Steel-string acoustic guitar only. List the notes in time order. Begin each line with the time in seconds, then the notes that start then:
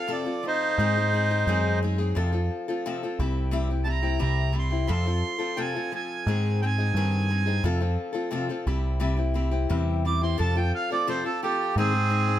0.07 F2 C3 F3 C4 F4 A4
0.24 F3 C4 F4 A4
0.43 F3 C4 F4 A4
0.79 G#2 D#3 G#3 C4 D#4 G#4
0.97 G#3 C4 G#4
1.13 G#3 C4 D#4 G#4
1.30 G#3 C4 D#4 G#4
1.47 G#2 D#3 G#3 C4 D#4 G#4
1.82 G#3 C4 D#4 G#4
1.98 G#3 C4 D#4 G#4
2.15 F2 C3 F3 C4 F4 A4
2.32 F3 C4 F4 A4
2.68 F3 C4 F4 A4
2.86 F2 C3 F3 C4 F4 A4
3.03 F3 C4 F4 A4
3.19 G3 C4 E4 G4
3.51 C3 G3 C4 E4 G4
3.69 C4 E4 G4
3.84 G3 C4 E4 G4
4.02 C4 E4 G4
4.19 C3 G3 C4 E4 G4
4.52 G3 C4 E4 G4
4.71 C4 E4 G4
4.87 F2 C3 F3 C4 F4 A4
5.06 F3 C4 F4 A4
5.38 F3 C4 F4 A4
5.57 F2 C3 F3 C4 F4 A4
5.75 F3 C4 F4 A4
5.92 F3 C4 F4 A4
6.27 G#2 D#3 G#3 C4 D#4 G#4
6.63 G#3 C4 D#4 G#4
6.78 G#3 C4 D#4 G#4
6.96 D#3 C4 D#4 G#4
7.29 G#3 C4 D#4 G#4
7.46 G#3 C4 D#4 G#4
7.64 F2 C3 F3 C4 F4 A4
7.80 F3 C4 F4 A4
8.13 F3 C4 F4 A4
8.31 F2 C3 F3 C4 F4 A4
8.49 F3 C4 F4 A4
8.67 G3 C4 E4 G4
9.00 C3 G3 C4 E4 G4
9.16 C4 E4 G4
9.34 G3 C4 E4 G4
9.51 C4 E4 G4
9.69 C3 G3 C4 E4 G4
10.05 G3 C4 E4 G4
10.21 C4 E4 G4
10.38 F2 C3 F3 C4 F4 A4
10.56 F3 C4 F4 A4
10.90 F3 C4 F4 A4
11.07 F2 C3 F3 C4 F4 A4
11.24 F3 C4 F4 A4
11.43 F3 C4 F4 A4
11.78 G#2 D#3 G#3 C4 D#4 G#4
11.93 G#4
12.10 G#3 C4 D#4 G#4
12.27 G#3 C4 D#4 G#4